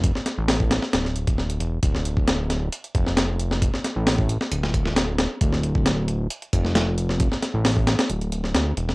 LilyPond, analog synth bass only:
\new Staff \with { instrumentName = "Analog synth bass" } { \clef bass \time 4/4 \key d \minor \tempo 4 = 134 f,,16 r8 a,,4 r16 d,,4. e,,8 | d,,2 r8 f,,4.~ | f,,16 r8 a,,4 r16 d,,4.~ d,,16 r16 | d,,2 r8 f,,4.~ |
f,,16 r8 a,,4 r16 d,,4 d,8 e,,8 | }